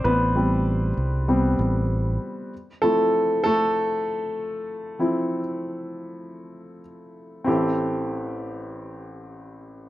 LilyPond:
<<
  \new Staff \with { instrumentName = "Grand piano" } { \time 4/4 \key a \minor \tempo 4 = 97 <b b'>4 r2. | r8 <a a'>4 <a a'>2~ <a a'>8~ | <a a'>2. r4 | <c' e' g' a'>1 | }
  \new Staff \with { instrumentName = "Grand piano" } { \time 4/4 \key a \minor r8 <g b c'>4. <g b c'>8 r4. | r8 <f c' e'>2.~ <f c' e'>8 | <f c' e'>8 r2. r8 | a,,1 | }
  \new Staff \with { instrumentName = "Fingered electric bass" } { \clef bass \time 4/4 \key a \minor a,,4. c,4 a,,4 r8 | r1 | r1 | r1 | }
>>